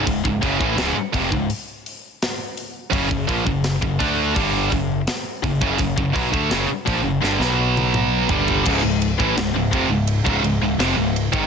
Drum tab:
CC |----------------|----------------|----------------|x---------------|
RD |----------------|----------------|----------------|--x-x-x-x-x-x-x-|
HH |o-o-o-o-o-o-o-o-|o-o-o-o-o-o-o-o-|o-o-o-o---------|----------------|
SD |----o-------o---|----o-------o---|----o---oo------|----o-------o---|
T1 |----------------|----------------|-----------o----|----------------|
T2 |----------------|----------------|------------o---|----------------|
FT |----------------|----------------|--------------oo|----------------|
BD |oooo--oo--------|oooo-oo-o-o---oo|oooo--o---------|o--o--o--o-----o|